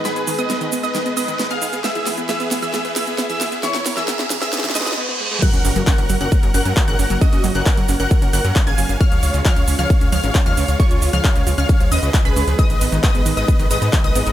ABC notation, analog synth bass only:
X:1
M:4/4
L:1/16
Q:1/4=134
K:F#
V:1 name="Analog synth bass" clef=bass
z16 | z16 | z16 | z F,,, F,,, F,,, z F,,, F,,, F,,, z F,,, F,,, F,, z G,,, F,,, F,,, |
z F,,, F,,, F,,, z F,,, F,,, F,,, z F,,, F,,, F,, z G,,, F,,, F,,, | z C,, C,, C,, z C,, C,, C,, z C,, C,, G,,, z D,, C,, C,, | z C,, C,, C,, z C,, C,, C,, z C,, D,, C,, z B,,, C,, C,, | z G,,, G,,, G,,, z G,,, G,,, G,,, z G,,, G,,, G,, z A,,, G,,, G,,, |]